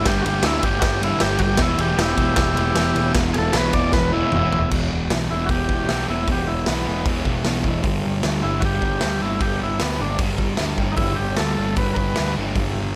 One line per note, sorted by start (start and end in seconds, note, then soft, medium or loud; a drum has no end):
0.04 0.20 G1 loud
0.04 0.42 G2 medium
0.04 0.29 D3 medium
0.04 0.25 G4 medium
0.04 kick loud
0.04 snare loud
0.04 ride loud
0.09 0.25 G3 loud
0.22 0.40 G1 medium
0.22 0.47 G3 medium
0.22 0.24 F#4 medium
0.22 ride medium
0.27 0.44 D3 medium
0.27 0.45 G4 loud
0.43 0.58 D2 medium
0.43 0.83 G2 medium
0.43 0.65 D3 medium
0.43 0.64 E4 medium
0.43 snare loud
0.43 ride loud
0.47 0.62 G3 medium
0.62 0.78 G1 medium
0.62 1.01 G3 medium
0.62 0.82 G4 loud
0.62 kick medium
0.62 ride medium
0.66 1.03 D3 medium
0.79 1.12 G1 medium
0.79 0.82 F#4 medium
0.79 kick loud
0.79 snare loud
0.79 ride loud
0.83 1.02 G4 loud
1.01 1.18 D3 medium
1.01 1.20 G3 medium
1.01 1.22 E4 medium
1.01 ride medium
1.17 1.36 G1 medium
1.17 1.56 G2 medium
1.17 1.58 D3 loud
1.17 1.59 G3 loud
1.17 1.40 G4 loud
1.17 snare loud
1.17 ride loud
1.39 1.55 G1 medium
1.39 1.41 F#4 medium
1.39 kick medium
1.39 ride medium
1.44 1.62 G4 loud
1.57 1.74 E1 loud
1.57 1.96 E2 medium
1.57 1.80 B2 medium
1.57 1.77 E3 loud
1.57 kick loud
1.57 snare loud
1.57 ride loud
1.62 1.80 E4 loud
1.77 1.93 E1 medium
1.77 1.98 B2 medium
1.77 2.00 E3 medium
1.77 1.99 G4 loud
1.77 ride medium
1.97 2.12 E1 medium
1.97 2.77 E2 medium
1.97 2.19 B2 medium
1.97 2.16 E3 medium
1.97 snare loud
1.97 ride loud
2.01 3.13 E4 medium
2.01 3.13 G4 medium
2.16 2.33 E1 medium
2.16 2.59 B2 medium
2.16 2.55 E3 medium
2.16 kick medium
2.16 ride medium
2.36 2.52 E1 medium
2.36 kick loud
2.36 snare loud
2.36 ride loud
2.55 2.70 E1 medium
2.55 2.79 E3 medium
2.55 ride medium
2.60 2.77 B2 medium
2.75 2.90 E1 medium
2.75 3.12 E2 loud
2.75 3.15 B2 loud
2.75 snare loud
2.75 ride loud
2.80 3.16 E3 loud
2.95 3.10 E1 medium
2.95 ride medium
3.13 3.30 E1 medium
3.13 3.53 E2 loud
3.13 3.38 B2 loud
3.13 kick loud
3.13 snare loud
3.13 ride medium
3.17 3.34 E3 loud
3.34 3.49 E1 medium
3.34 3.57 E3 medium
3.34 3.36 G#4 medium
3.34 ride medium
3.38 3.54 B2 medium
3.38 3.56 A4 loud
3.53 3.69 B1 loud
3.53 3.94 E2 medium
3.53 3.76 B2 medium
3.53 3.75 B4 medium
3.53 snare loud
3.53 ride loud
3.58 3.72 E3 medium
3.73 3.88 E1 medium
3.73 4.11 E3 medium
3.73 3.93 D5 loud
3.73 kick medium
3.73 ride medium
3.77 4.15 B2 medium
3.92 4.22 E1 medium
3.92 4.12 B4 loud
3.92 kick loud
3.92 snare medium
4.12 4.33 B2 medium
4.12 4.35 E3 medium
4.12 4.70 E4 medium
4.32 4.47 E1 medium
4.32 4.68 E2 loud
4.32 4.71 B2 loud
4.32 mid tom medium
4.36 4.72 E3 loud
4.52 4.67 E1 loud
4.52 floor tom medium
4.70 4.88 E1 medium
4.70 5.09 E2 medium
4.70 5.11 B2 medium
4.70 5.13 E3 medium
4.70 kick loud
4.70 crash medium
4.91 5.08 E1 medium
5.10 5.27 B1 medium
5.10 5.47 E2 medium
5.10 5.33 B2 loud
5.10 5.31 E3 loud
5.10 snare loud
5.10 open hi-hat medium
5.30 5.47 E1 medium
5.30 5.49 B2 medium
5.30 5.50 E3 medium
5.30 5.49 E4 medium
5.46 5.66 E1 medium
5.46 5.85 E2 medium
5.46 5.49 F#4 medium
5.46 kick loud
5.46 open hi-hat soft
5.50 5.88 B2 medium
5.50 5.91 E3 medium
5.50 6.07 G4 medium
5.69 5.86 E1 medium
5.69 kick medium
5.87 6.05 B1 medium
5.87 6.27 E2 medium
5.87 6.09 B2 medium
5.87 snare medium
5.87 open hi-hat soft
5.92 6.05 E3 medium
6.06 6.25 E1 medium
6.06 6.31 E3 medium
6.06 6.28 E4 medium
6.11 6.29 B2 medium
6.27 6.44 E1 medium
6.27 6.67 E2 medium
6.27 6.69 B2 medium
6.27 kick loud
6.27 open hi-hat medium
6.32 6.71 E3 loud
6.32 6.49 G4 medium
6.47 6.64 E1 medium
6.47 6.67 E4 medium
6.66 6.84 B1 medium
6.66 7.04 E2 medium
6.66 6.90 B2 medium
6.66 6.86 B3 medium
6.66 snare loud
6.66 open hi-hat medium
6.72 6.87 E3 medium
6.87 7.03 E1 medium
6.87 7.08 E3 medium
6.87 7.06 B3 medium
6.92 7.06 B2 medium
7.05 7.22 E1 medium
7.05 7.43 E2 medium
7.05 7.44 B2 medium
7.05 7.47 E3 medium
7.05 kick loud
7.05 open hi-hat medium
7.25 7.42 E1 medium
7.25 kick medium
7.44 7.62 B1 medium
7.44 7.83 E2 medium
7.44 7.67 B2 medium
7.44 7.63 E3 medium
7.44 snare loud
7.44 open hi-hat medium
7.64 7.81 E1 medium
7.64 7.83 E3 medium
7.64 kick medium
7.68 7.85 B2 medium
7.83 8.01 G1 medium
7.83 8.22 G2 medium
7.83 8.23 D3 loud
7.83 kick medium
7.83 open hi-hat medium
7.87 8.26 G3 loud
8.05 8.22 G1 medium
8.23 8.40 D2 medium
8.23 8.61 G2 medium
8.23 8.45 D3 loud
8.23 8.42 G3 medium
8.23 snare loud
8.23 open hi-hat medium
8.43 8.60 G1 medium
8.43 8.62 D3 medium
8.43 8.64 G3 medium
8.43 8.62 E4 loud
8.60 8.80 G1 medium
8.60 9.00 G2 medium
8.60 9.01 D3 medium
8.60 8.63 F#4 medium
8.60 kick loud
8.60 open hi-hat medium
8.65 9.04 G3 medium
8.65 9.21 G4 medium
8.82 8.99 G1 medium
8.82 kick medium
9.01 9.19 D2 medium
9.01 9.40 G2 medium
9.01 9.24 D3 medium
9.01 snare loud
9.01 open hi-hat soft
9.05 9.20 G3 medium
9.20 9.39 G1 medium
9.20 9.44 G3 medium
9.20 9.41 E4 medium
9.25 9.40 D3 medium
9.40 9.58 G1 medium
9.40 9.79 G2 medium
9.40 9.80 D3 loud
9.40 9.82 G3 medium
9.40 9.61 G4 medium
9.40 kick loud
9.40 open hi-hat soft
9.61 9.78 G1 medium
9.61 9.81 E4 medium
9.79 9.97 D2 medium
9.79 10.18 G2 medium
9.79 10.01 D3 medium
9.79 9.98 G3 medium
9.79 10.01 B3 medium
9.79 snare loud
9.79 open hi-hat medium
9.98 10.17 G1 medium
9.98 10.22 G3 medium
9.98 10.20 D4 medium
10.02 10.20 D3 medium
10.18 10.36 G1 medium
10.18 10.58 G2 medium
10.18 10.58 D3 medium
10.18 kick loud
10.18 open hi-hat medium
10.22 10.61 G3 medium
10.38 10.56 G1 medium
10.38 kick medium
10.57 10.75 D2 medium
10.57 10.97 G2 medium
10.57 10.82 D3 medium
10.57 10.79 G3 medium
10.57 snare loud
10.57 open hi-hat medium
10.78 10.95 G1 medium
10.78 11.01 G3 medium
10.78 kick medium
10.83 10.98 D3 medium
10.92 10.95 D#4 medium
10.96 11.14 G1 loud
10.96 11.38 G2 medium
10.96 11.39 D3 medium
10.96 11.16 E4 medium
10.96 kick loud
10.96 open hi-hat medium
11.01 11.42 G3 loud
11.16 11.36 G1 medium
11.16 11.36 G4 medium
11.37 11.55 D2 medium
11.37 11.78 G2 medium
11.37 11.60 D3 medium
11.37 11.75 A4 medium
11.37 snare loud
11.37 open hi-hat medium
11.42 11.58 G3 medium
11.58 11.74 G1 medium
11.58 11.79 D3 medium
11.58 11.81 G3 medium
11.76 11.93 G1 medium
11.76 12.15 G2 medium
11.76 11.96 B4 medium
11.76 kick loud
11.76 open hi-hat medium
11.80 12.18 D3 medium
11.80 12.20 G3 medium
11.94 12.13 G1 medium
11.94 11.96 A#4 medium
11.94 12.35 B4 medium
11.94 kick medium
12.16 12.34 D2 medium
12.16 12.54 G2 medium
12.16 12.38 D3 medium
12.16 snare medium
12.16 open hi-hat medium
12.21 12.35 G3 medium
12.35 12.53 G1 medium
12.35 12.57 D3 medium
12.35 12.59 G3 medium
12.55 12.72 G1 medium
12.55 12.93 G2 medium
12.55 12.95 D3 medium
12.55 12.95 G3 loud
12.55 kick medium
12.55 open hi-hat soft
12.75 12.92 G1 medium